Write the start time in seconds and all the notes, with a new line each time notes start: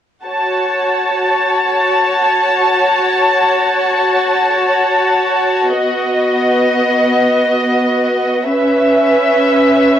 0.26 F#4 C#5 A5
5.72 B3 D#5
8.43 C#4 B4 E5